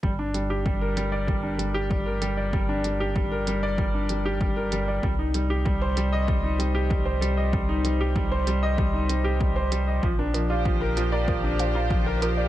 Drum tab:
HH |-x-x-x-x|-x-x-x-x|-x-x-x-x|-x-x-x-x|
BD |o-o-o-o-|o-o-o-o-|o-o-o-o-|o-o-o-o-|

HH |-x-x-x-x|
BD |o-o-o-o-|